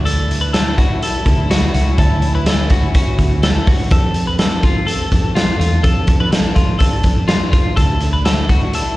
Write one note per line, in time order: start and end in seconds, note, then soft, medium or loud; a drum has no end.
0.00 0.95 D2 medium
0.00 3.88 F#3 medium
0.00 1.71 D4 medium
0.00 3.87 E4 medium
0.05 0.40 A4 loud
0.05 closed hi-hat medium
0.31 closed hi-hat medium
0.41 0.53 B4 medium
0.53 0.78 A4 medium
0.53 snare loud
0.53 closed hi-hat loud
0.78 1.02 F#4 medium
0.78 kick medium
0.78 closed hi-hat medium
1.02 1.48 A4 medium
1.02 closed hi-hat medium
1.26 1.67 D2 loud
1.26 kick medium
1.26 closed hi-hat medium
1.51 1.73 F#4 medium
1.51 snare loud
1.51 closed hi-hat medium
1.74 1.95 C#2 medium
1.74 3.89 C#4 medium
1.74 1.99 F#4 medium
1.74 closed hi-hat medium
1.98 3.03 D2 loud
1.98 2.33 A4 medium
1.98 kick loud
1.98 closed hi-hat medium
2.22 closed hi-hat medium
2.35 2.47 B4 medium
2.46 2.71 A4 medium
2.46 snare loud
2.46 closed hi-hat loud
2.70 2.94 F#4 medium
2.70 kick medium
2.70 closed hi-hat medium
2.94 3.40 F#4 medium
2.94 kick medium
2.94 closed hi-hat medium
3.19 3.60 D2 medium
3.19 kick medium
3.19 closed hi-hat medium
3.43 3.67 A4 medium
3.43 snare loud
3.43 closed hi-hat medium
3.67 3.92 F#4 medium
3.67 kick medium
3.67 open hi-hat medium
3.88 4.96 F2 loud
3.88 7.72 F3 medium
3.88 5.81 C4 medium
3.88 7.72 A4 medium
3.88 4.26 A4 medium
3.88 kick loud
3.88 closed hi-hat medium
4.14 closed hi-hat medium
4.27 4.39 B4 medium
4.39 4.64 A4 medium
4.39 snare loud
4.39 closed hi-hat medium
4.63 4.87 F4 medium
4.63 kick medium
4.63 closed hi-hat medium
4.87 5.32 A4 medium
4.87 closed hi-hat medium
5.12 5.53 F2 loud
5.12 kick medium
5.12 closed hi-hat medium
5.35 5.58 F4 medium
5.35 snare loud
5.35 closed hi-hat medium
5.59 5.80 E2 medium
5.59 5.84 F4 medium
5.59 closed hi-hat medium
5.83 6.89 F2 loud
5.83 7.75 D4 medium
5.83 6.18 A4 medium
5.83 kick loud
5.83 closed hi-hat medium
6.07 kick loud
6.07 closed hi-hat medium
6.20 6.31 B4 medium
6.31 6.56 A4 medium
6.31 snare loud
6.31 closed hi-hat loud
6.55 6.80 F4 medium
6.55 kick medium
6.55 closed hi-hat medium
6.79 7.25 A4 medium
6.79 kick medium
6.79 closed hi-hat medium
7.03 7.45 F2 medium
7.03 kick medium
7.03 closed hi-hat medium
7.28 7.50 F4 medium
7.28 snare loud
7.28 closed hi-hat medium
7.52 7.76 F4 medium
7.52 kick loud
7.52 closed hi-hat medium
7.76 8.81 D2 loud
7.76 8.97 F#3 medium
7.76 8.97 D4 medium
7.76 8.97 E4 medium
7.76 8.11 A4 loud
7.76 kick medium
7.76 closed hi-hat medium
8.00 closed hi-hat medium
8.13 8.25 B4 medium
8.25 8.49 A4 medium
8.25 snare loud
8.25 closed hi-hat loud
8.49 8.74 F#4 medium
8.49 kick medium
8.49 closed hi-hat medium
8.73 8.97 A4 medium
8.73 closed hi-hat medium